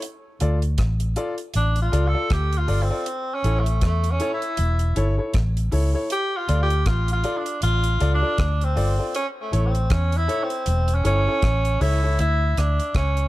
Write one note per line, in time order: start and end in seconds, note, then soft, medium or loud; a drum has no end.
0.02 closed hi-hat loud
0.40 0.77 D2 medium
0.40 0.57 F4 medium
0.40 0.58 A4 medium
0.40 0.58 D5 medium
0.40 closed hi-hat medium
0.62 closed hi-hat soft
0.78 1.15 A1 medium
0.78 kick loud
0.78 cross-stick loud
0.78 closed hi-hat medium
1.00 closed hi-hat medium
1.16 1.33 F4 loud
1.16 1.33 A4 medium
1.16 1.34 D5 loud
1.16 closed hi-hat medium
1.38 closed hi-hat soft
1.54 1.91 A1 medium
1.54 1.79 D4 medium
1.54 closed hi-hat medium
1.76 closed hi-hat medium
1.82 2.09 F4 medium
1.92 2.14 C#2 medium
1.92 2.09 F4 medium
1.92 2.09 A4 medium
1.92 2.10 D5 loud
1.92 closed hi-hat medium
2.07 2.34 A4 loud
2.14 2.26 F4 medium
2.14 2.27 A4 medium
2.14 2.27 D5 medium
2.30 2.67 D2 medium
2.30 2.59 G4 loud
2.30 kick loud
2.30 cross-stick loud
2.30 closed hi-hat medium
2.53 closed hi-hat medium
2.58 2.84 F4 medium
2.67 2.90 G1 medium
2.67 2.85 F4 medium
2.67 2.85 A4 medium
2.67 2.85 D5 loud
2.67 open hi-hat medium
2.83 3.35 C4 medium
2.90 3.02 F4 medium
2.90 3.03 A4 medium
2.90 3.03 D5 medium
3.06 closed hi-hat medium
3.34 3.61 C#4 medium
3.44 3.83 A1 medium
3.44 3.61 E4 medium
3.44 3.61 A4 medium
3.44 3.62 C#5 medium
3.44 closed hi-hat medium
3.60 3.84 A3 medium
3.66 closed hi-hat soft
3.81 4.19 E2 loud
3.81 kick loud
3.81 cross-stick medium
3.81 closed hi-hat medium
3.86 4.13 A3 medium
4.04 closed hi-hat medium
4.11 4.34 C#4 medium
4.20 4.37 E4 loud
4.20 4.37 A4 medium
4.20 4.38 C#5 loud
4.20 closed hi-hat medium
4.34 5.06 E4 medium
4.42 closed hi-hat medium
4.57 4.95 E1 loud
4.57 closed hi-hat medium
4.79 closed hi-hat medium
4.96 5.18 G1 medium
4.96 5.13 E4 medium
4.96 5.13 A4 medium
4.96 5.14 C#5 loud
4.96 closed hi-hat medium
5.18 5.30 E4 medium
5.18 5.31 A4 medium
5.18 5.31 C#5 medium
5.34 5.71 A1 loud
5.34 kick loud
5.34 cross-stick loud
5.34 closed hi-hat medium
5.57 closed hi-hat medium
5.71 5.94 C#2 medium
5.71 5.89 E4 medium
5.71 5.89 A4 medium
5.71 5.90 C#5 medium
5.71 open hi-hat medium
5.93 6.06 E4 medium
5.93 6.06 A4 medium
5.93 6.07 C#5 medium
6.10 6.38 G4 loud
6.10 closed hi-hat medium
6.37 6.62 F4 loud
6.48 6.85 D2 medium
6.48 6.65 F4 medium
6.48 6.65 A4 medium
6.48 6.66 D5 loud
6.48 closed hi-hat medium
6.63 6.88 G4 loud
6.70 closed hi-hat soft
6.86 7.23 A1 medium
6.86 7.12 F4 loud
6.86 kick loud
6.86 cross-stick loud
6.86 closed hi-hat medium
7.08 closed hi-hat medium
7.13 7.39 F4 loud
7.24 7.41 F4 loud
7.24 7.41 A4 medium
7.24 7.42 D5 loud
7.24 closed hi-hat medium
7.37 7.62 D4 medium
7.46 closed hi-hat medium
7.62 7.99 A1 loud
7.62 8.10 F4 loud
7.62 closed hi-hat medium
7.84 closed hi-hat soft
8.00 8.22 C#2 medium
8.00 8.17 F4 medium
8.00 8.18 A4 medium
8.00 8.18 D5 loud
8.00 closed hi-hat medium
8.14 8.66 D4 loud
8.22 8.34 F4 medium
8.22 8.34 A4 medium
8.22 8.35 D5 medium
8.38 8.75 D2 loud
8.38 kick loud
8.38 cross-stick loud
8.38 closed hi-hat medium
8.61 9.15 C4 medium
8.61 closed hi-hat medium
8.76 8.98 G1 loud
8.76 8.93 F4 medium
8.76 8.93 A4 medium
8.76 8.94 D5 loud
8.76 open hi-hat medium
8.99 9.11 F4 medium
8.99 9.11 A4 medium
8.99 9.11 D5 medium
9.15 9.27 C#4 loud
9.15 closed hi-hat loud
9.42 9.68 A3 medium
9.52 9.89 A1 medium
9.52 9.69 E4 medium
9.52 9.69 A4 medium
9.52 9.70 C#5 medium
9.52 closed hi-hat medium
9.66 9.93 C4 medium
9.75 closed hi-hat soft
9.90 10.27 E2 medium
9.90 10.18 C#4 medium
9.90 kick loud
9.90 cross-stick loud
9.90 closed hi-hat medium
10.12 closed hi-hat medium
10.17 10.45 E4 loud
10.28 10.45 E4 loud
10.28 10.45 A4 medium
10.28 10.46 C#5 loud
10.28 closed hi-hat medium
10.43 10.96 C4 medium
10.50 closed hi-hat medium
10.66 11.03 E1 loud
10.66 closed hi-hat medium
10.88 closed hi-hat medium
10.94 11.05 C#4 medium
11.04 11.26 G1 medium
11.04 11.83 C#4 loud
11.04 11.21 E4 medium
11.04 11.21 A4 medium
11.04 11.22 C#5 loud
11.04 closed hi-hat medium
11.27 11.39 E4 medium
11.27 11.39 A4 medium
11.27 11.40 C#5 medium
11.42 11.79 A1 medium
11.42 kick loud
11.42 cross-stick loud
11.42 closed hi-hat medium
11.65 closed hi-hat medium
11.80 12.17 C#2 loud
11.80 11.97 E4 medium
11.80 12.19 E4 loud
11.80 11.98 A4 medium
11.80 11.98 C#5 loud
11.80 open hi-hat medium
12.03 12.15 E4 medium
12.03 12.15 A4 medium
12.03 12.16 C#5 medium
12.19 12.55 D2 loud
12.19 12.60 E4 loud
12.19 closed hi-hat medium
12.57 12.78 D2 medium
12.57 12.95 D4 loud
12.57 cross-stick medium
12.57 closed hi-hat medium
12.80 closed hi-hat soft
12.95 13.28 C#2 medium
12.95 13.28 C#4 loud
12.95 kick medium
12.95 cross-stick loud
12.95 closed hi-hat medium
13.17 closed hi-hat medium